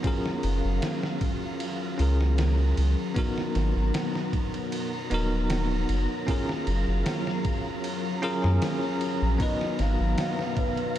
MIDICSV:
0, 0, Header, 1, 7, 480
1, 0, Start_track
1, 0, Tempo, 779221
1, 27, Time_signature, 4, 2, 24, 8
1, 6767, End_track
2, 0, Start_track
2, 0, Title_t, "Synth texture"
2, 0, Program_c, 0, 99
2, 5789, Note_on_c, 0, 77, 81
2, 6767, Note_off_c, 0, 77, 0
2, 6767, End_track
3, 0, Start_track
3, 0, Title_t, "Soft synth lead"
3, 0, Program_c, 1, 80
3, 5798, Note_on_c, 1, 75, 108
3, 6038, Note_on_c, 1, 77, 119
3, 6048, Note_off_c, 1, 75, 0
3, 6517, Note_on_c, 1, 71, 111
3, 6527, Note_off_c, 1, 77, 0
3, 6767, Note_off_c, 1, 71, 0
3, 6767, End_track
4, 0, Start_track
4, 0, Title_t, "Tine electric piano"
4, 0, Program_c, 2, 4
4, 0, Control_c, 2, 64, 127
4, 18, Note_on_c, 2, 61, 80
4, 27, Note_on_c, 2, 65, 71
4, 34, Control_c, 2, 64, 0
4, 36, Note_on_c, 2, 68, 70
4, 44, Note_on_c, 2, 70, 84
4, 158, Control_c, 2, 64, 127
4, 1196, Note_off_c, 2, 61, 0
4, 1200, Note_off_c, 2, 65, 0
4, 1205, Note_off_c, 2, 68, 0
4, 1208, Note_off_c, 2, 70, 0
4, 1219, Note_on_c, 2, 61, 70
4, 1228, Note_on_c, 2, 65, 62
4, 1235, Note_on_c, 2, 68, 66
4, 1243, Note_on_c, 2, 70, 80
4, 1916, Note_off_c, 2, 61, 0
4, 1921, Note_off_c, 2, 65, 0
4, 1924, Note_off_c, 2, 68, 0
4, 1928, Note_off_c, 2, 70, 0
4, 1937, Note_on_c, 2, 59, 81
4, 1947, Note_on_c, 2, 63, 70
4, 1955, Control_c, 2, 64, 0
4, 1955, Note_on_c, 2, 66, 72
4, 1962, Note_on_c, 2, 70, 87
4, 2065, Control_c, 2, 64, 127
4, 3115, Note_off_c, 2, 59, 0
4, 3120, Note_off_c, 2, 63, 0
4, 3124, Note_off_c, 2, 66, 0
4, 3128, Note_off_c, 2, 70, 0
4, 3144, Note_on_c, 2, 59, 82
4, 3152, Note_on_c, 2, 63, 75
4, 3160, Note_on_c, 2, 66, 71
4, 3167, Note_on_c, 2, 70, 93
4, 3838, Note_off_c, 2, 59, 0
4, 3842, Note_off_c, 2, 63, 0
4, 3846, Note_off_c, 2, 66, 0
4, 3850, Note_off_c, 2, 70, 0
4, 3860, Note_on_c, 2, 61, 82
4, 3868, Note_on_c, 2, 65, 69
4, 3875, Control_c, 2, 64, 0
4, 3877, Note_on_c, 2, 68, 70
4, 3885, Note_on_c, 2, 70, 80
4, 3972, Control_c, 2, 64, 127
4, 5037, Note_off_c, 2, 61, 0
4, 5041, Note_off_c, 2, 65, 0
4, 5045, Note_off_c, 2, 68, 0
4, 5049, Note_off_c, 2, 70, 0
4, 5064, Note_on_c, 2, 61, 96
4, 5068, Note_on_c, 2, 65, 86
4, 5072, Note_on_c, 2, 68, 86
4, 5076, Note_on_c, 2, 70, 102
4, 5163, Note_off_c, 2, 61, 0
4, 5165, Note_off_c, 2, 65, 0
4, 5167, Note_off_c, 2, 68, 0
4, 5169, Note_off_c, 2, 70, 0
4, 5188, Note_on_c, 2, 61, 71
4, 5196, Note_on_c, 2, 65, 65
4, 5203, Note_on_c, 2, 68, 68
4, 5212, Note_on_c, 2, 70, 76
4, 5756, Note_off_c, 2, 61, 0
4, 5760, Note_off_c, 2, 65, 0
4, 5764, Note_off_c, 2, 68, 0
4, 5768, Note_off_c, 2, 70, 0
4, 5780, Note_on_c, 2, 59, 79
4, 5790, Note_on_c, 2, 63, 70
4, 5793, Control_c, 2, 64, 0
4, 5797, Note_on_c, 2, 66, 68
4, 5805, Note_on_c, 2, 71, 85
4, 5898, Control_c, 2, 64, 127
4, 6767, Note_off_c, 2, 59, 0
4, 6767, Note_off_c, 2, 63, 0
4, 6767, Note_off_c, 2, 66, 0
4, 6767, Note_off_c, 2, 71, 0
4, 6767, End_track
5, 0, Start_track
5, 0, Title_t, "String machine"
5, 0, Program_c, 3, 50
5, 0, Note_on_c, 3, 54, 85
5, 0, Note_on_c, 3, 82, 91
5, 18, Note_on_c, 3, 77, 78
5, 1920, Note_off_c, 3, 54, 0
5, 1923, Note_off_c, 3, 77, 0
5, 1945, Note_on_c, 3, 54, 85
5, 1945, Note_on_c, 3, 59, 82
5, 3847, Note_off_c, 3, 59, 0
5, 3864, Note_on_c, 3, 77, 75
5, 5766, Note_off_c, 3, 77, 0
5, 5794, Note_on_c, 3, 59, 79
5, 6767, Note_off_c, 3, 54, 0
5, 6767, Note_off_c, 3, 59, 0
5, 6767, Note_off_c, 3, 82, 0
5, 6767, End_track
6, 0, Start_track
6, 0, Title_t, "Sub bass"
6, 0, Program_c, 4, 38
6, 269, Note_on_c, 4, 30, 100
6, 381, Note_off_c, 4, 30, 0
6, 397, Note_on_c, 4, 30, 93
6, 494, Note_off_c, 4, 30, 0
6, 1228, Note_on_c, 4, 37, 91
6, 1686, Note_off_c, 4, 37, 0
6, 1710, Note_on_c, 4, 37, 86
6, 1821, Note_off_c, 4, 37, 0
6, 2190, Note_on_c, 4, 32, 109
6, 2301, Note_off_c, 4, 32, 0
6, 2317, Note_on_c, 4, 32, 92
6, 2414, Note_off_c, 4, 32, 0
6, 3147, Note_on_c, 4, 27, 88
6, 3606, Note_off_c, 4, 27, 0
6, 3628, Note_on_c, 4, 30, 92
6, 3740, Note_off_c, 4, 30, 0
6, 4109, Note_on_c, 4, 30, 104
6, 4221, Note_off_c, 4, 30, 0
6, 4236, Note_on_c, 4, 30, 90
6, 4334, Note_off_c, 4, 30, 0
6, 5199, Note_on_c, 4, 42, 112
6, 5295, Note_off_c, 4, 42, 0
6, 5679, Note_on_c, 4, 34, 112
6, 5775, Note_off_c, 4, 34, 0
6, 6033, Note_on_c, 4, 32, 104
6, 6143, Note_off_c, 4, 32, 0
6, 6160, Note_on_c, 4, 32, 90
6, 6256, Note_off_c, 4, 32, 0
6, 6767, End_track
7, 0, Start_track
7, 0, Title_t, "Drums"
7, 25, Note_on_c, 9, 51, 83
7, 26, Note_on_c, 9, 36, 105
7, 87, Note_off_c, 9, 51, 0
7, 88, Note_off_c, 9, 36, 0
7, 158, Note_on_c, 9, 38, 48
7, 219, Note_off_c, 9, 38, 0
7, 266, Note_on_c, 9, 51, 66
7, 328, Note_off_c, 9, 51, 0
7, 507, Note_on_c, 9, 51, 84
7, 510, Note_on_c, 9, 38, 111
7, 568, Note_off_c, 9, 51, 0
7, 571, Note_off_c, 9, 38, 0
7, 637, Note_on_c, 9, 38, 53
7, 698, Note_off_c, 9, 38, 0
7, 745, Note_on_c, 9, 51, 65
7, 747, Note_on_c, 9, 36, 86
7, 807, Note_off_c, 9, 51, 0
7, 808, Note_off_c, 9, 36, 0
7, 986, Note_on_c, 9, 51, 86
7, 1048, Note_off_c, 9, 51, 0
7, 1227, Note_on_c, 9, 51, 67
7, 1289, Note_off_c, 9, 51, 0
7, 1359, Note_on_c, 9, 38, 48
7, 1421, Note_off_c, 9, 38, 0
7, 1467, Note_on_c, 9, 51, 91
7, 1470, Note_on_c, 9, 38, 119
7, 1529, Note_off_c, 9, 51, 0
7, 1532, Note_off_c, 9, 38, 0
7, 1709, Note_on_c, 9, 51, 68
7, 1770, Note_off_c, 9, 51, 0
7, 1948, Note_on_c, 9, 51, 89
7, 1949, Note_on_c, 9, 36, 111
7, 2010, Note_off_c, 9, 36, 0
7, 2010, Note_off_c, 9, 51, 0
7, 2080, Note_on_c, 9, 38, 43
7, 2142, Note_off_c, 9, 38, 0
7, 2188, Note_on_c, 9, 51, 61
7, 2191, Note_on_c, 9, 38, 35
7, 2250, Note_off_c, 9, 51, 0
7, 2253, Note_off_c, 9, 38, 0
7, 2429, Note_on_c, 9, 51, 82
7, 2432, Note_on_c, 9, 38, 115
7, 2490, Note_off_c, 9, 51, 0
7, 2494, Note_off_c, 9, 38, 0
7, 2559, Note_on_c, 9, 38, 39
7, 2621, Note_off_c, 9, 38, 0
7, 2668, Note_on_c, 9, 36, 91
7, 2669, Note_on_c, 9, 51, 63
7, 2730, Note_off_c, 9, 36, 0
7, 2730, Note_off_c, 9, 51, 0
7, 2797, Note_on_c, 9, 51, 42
7, 2859, Note_off_c, 9, 51, 0
7, 2909, Note_on_c, 9, 51, 81
7, 2970, Note_off_c, 9, 51, 0
7, 3147, Note_on_c, 9, 51, 68
7, 3209, Note_off_c, 9, 51, 0
7, 3387, Note_on_c, 9, 51, 85
7, 3390, Note_on_c, 9, 38, 115
7, 3448, Note_off_c, 9, 51, 0
7, 3451, Note_off_c, 9, 38, 0
7, 3628, Note_on_c, 9, 51, 68
7, 3690, Note_off_c, 9, 51, 0
7, 3869, Note_on_c, 9, 36, 104
7, 3869, Note_on_c, 9, 51, 90
7, 3930, Note_off_c, 9, 36, 0
7, 3930, Note_off_c, 9, 51, 0
7, 4000, Note_on_c, 9, 38, 50
7, 4061, Note_off_c, 9, 38, 0
7, 4108, Note_on_c, 9, 51, 66
7, 4170, Note_off_c, 9, 51, 0
7, 4348, Note_on_c, 9, 51, 81
7, 4351, Note_on_c, 9, 38, 115
7, 4410, Note_off_c, 9, 51, 0
7, 4413, Note_off_c, 9, 38, 0
7, 4479, Note_on_c, 9, 38, 57
7, 4541, Note_off_c, 9, 38, 0
7, 4587, Note_on_c, 9, 51, 67
7, 4588, Note_on_c, 9, 36, 95
7, 4649, Note_off_c, 9, 51, 0
7, 4650, Note_off_c, 9, 36, 0
7, 4829, Note_on_c, 9, 51, 83
7, 4891, Note_off_c, 9, 51, 0
7, 5068, Note_on_c, 9, 51, 63
7, 5130, Note_off_c, 9, 51, 0
7, 5200, Note_on_c, 9, 38, 47
7, 5262, Note_off_c, 9, 38, 0
7, 5309, Note_on_c, 9, 51, 93
7, 5312, Note_on_c, 9, 38, 119
7, 5371, Note_off_c, 9, 51, 0
7, 5374, Note_off_c, 9, 38, 0
7, 5549, Note_on_c, 9, 51, 73
7, 5611, Note_off_c, 9, 51, 0
7, 5790, Note_on_c, 9, 36, 110
7, 5790, Note_on_c, 9, 51, 88
7, 5851, Note_off_c, 9, 36, 0
7, 5851, Note_off_c, 9, 51, 0
7, 5921, Note_on_c, 9, 38, 43
7, 5983, Note_off_c, 9, 38, 0
7, 6030, Note_on_c, 9, 51, 64
7, 6033, Note_on_c, 9, 38, 38
7, 6092, Note_off_c, 9, 51, 0
7, 6095, Note_off_c, 9, 38, 0
7, 6269, Note_on_c, 9, 51, 85
7, 6272, Note_on_c, 9, 38, 119
7, 6331, Note_off_c, 9, 51, 0
7, 6334, Note_off_c, 9, 38, 0
7, 6401, Note_on_c, 9, 38, 41
7, 6462, Note_off_c, 9, 38, 0
7, 6509, Note_on_c, 9, 36, 92
7, 6509, Note_on_c, 9, 51, 62
7, 6571, Note_off_c, 9, 36, 0
7, 6571, Note_off_c, 9, 51, 0
7, 6637, Note_on_c, 9, 51, 43
7, 6698, Note_off_c, 9, 51, 0
7, 6767, End_track
0, 0, End_of_file